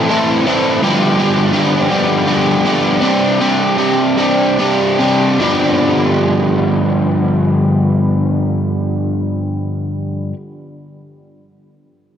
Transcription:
0.09 0.45 A2 medium
0.09 0.46 E3 medium
0.09 0.46 C4 medium
0.09 0.46 E4 medium
0.09 0.46 A4 medium
0.46 0.80 A2 medium
0.46 0.80 E3 medium
0.46 0.80 C4 medium
0.46 0.81 E4 medium
0.46 0.81 A4 medium
0.82 1.17 G2 medium
0.82 1.18 D3 medium
0.82 1.18 F3 medium
0.82 1.19 G3 medium
0.82 1.18 B3 medium
0.82 1.19 G4 medium
1.18 1.52 G2 medium
1.18 1.52 D3 medium
1.18 1.53 F3 medium
1.18 1.54 G3 medium
1.18 1.53 B3 medium
1.18 1.54 G4 medium
1.53 1.89 G2 medium
1.53 1.89 D3 medium
1.53 1.90 F3 medium
1.53 1.91 G3 medium
1.53 1.90 B3 medium
1.53 1.91 G4 medium
1.90 2.25 G2 medium
1.90 2.26 D3 medium
1.90 2.26 F3 medium
1.90 2.27 G3 medium
1.90 2.27 B3 medium
1.90 2.28 G4 medium
2.26 2.64 G2 medium
2.26 2.64 D3 medium
2.26 2.65 F3 medium
2.26 2.66 G3 medium
2.26 2.66 B3 medium
2.26 2.66 G4 medium
2.65 3.00 G2 medium
2.65 3.00 D3 medium
2.65 3.01 F3 medium
2.65 3.02 G3 medium
2.65 3.01 B3 medium
2.65 3.02 G4 medium
3.01 3.39 C3 medium
3.01 3.39 G3 medium
3.01 3.40 C4 medium
3.01 3.40 D4 medium
3.01 3.40 G4 medium
3.40 3.77 C3 medium
3.40 3.77 G3 medium
3.40 3.77 C4 medium
3.40 3.78 D4 medium
3.40 3.78 G4 medium
3.78 4.16 C3 medium
3.78 4.17 G3 medium
3.78 4.17 C4 medium
3.78 4.17 D4 medium
3.78 4.18 G4 medium
4.17 4.58 C3 medium
4.17 4.58 G3 medium
4.17 4.59 C4 medium
4.17 4.59 D4 medium
4.17 4.59 G4 medium
4.59 4.98 C3 medium
4.59 4.99 G3 medium
4.59 4.99 C4 medium
4.59 4.99 D4 medium
4.59 4.99 G4 medium
4.99 5.39 C3 medium
4.99 5.39 G3 medium
4.99 5.39 C4 medium
4.99 5.39 D4 medium
4.99 5.39 G4 medium
5.39 10.32 G2 medium
5.39 10.33 D3 medium
5.39 10.33 F3 medium
5.39 10.34 G3 medium
5.39 10.35 B3 medium
5.43 10.36 G4 medium

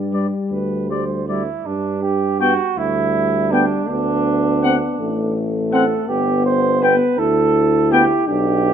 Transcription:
0.00 0.32 G2 soft
0.00 1.24 G3 soft
0.13 0.26 G3 soft
0.13 0.27 B4 soft
0.13 0.27 D5 soft
0.51 1.47 D2 soft
0.51 0.87 B4 soft
0.90 1.04 G3 soft
0.90 1.28 C5 soft
0.90 1.04 D5 soft
1.28 1.42 G3 soft
1.28 1.67 E4 soft
1.28 1.42 D5 soft
1.66 2.59 G2 soft
1.66 2.02 D4 soft
2.03 2.39 G4 medium
2.40 2.53 B3 soft
2.40 2.79 F#4 medium
2.40 2.53 G5 soft
2.77 3.70 D2 soft
2.77 3.90 G3 soft
2.77 3.53 E4 medium
3.51 3.65 B3 soft
3.51 3.88 D4 medium
3.51 3.65 G5 soft
3.89 4.81 D2 soft
3.89 5.01 B3 soft
3.89 5.33 D4 medium
4.63 4.76 C4 soft
4.63 4.76 F#5 soft
4.99 5.91 A1 soft
4.99 6.10 A3 soft
5.72 5.85 C4 soft
5.72 6.06 A4 medium
5.72 5.85 F#5 soft
6.09 7.00 G1 medium
6.09 7.20 B3 medium
6.09 6.45 G4 medium
6.46 6.84 C5 medium
6.82 6.95 B3 soft
6.82 7.20 B4 medium
6.82 6.95 G5 medium
7.18 8.10 D2 medium
7.18 8.29 E4 medium
7.18 7.93 A4 medium
7.92 8.04 B3 medium
7.92 8.27 G4 medium
7.92 8.05 G5 medium
8.27 8.74 B1 medium
8.27 8.74 D4 medium
8.27 8.74 G4 medium

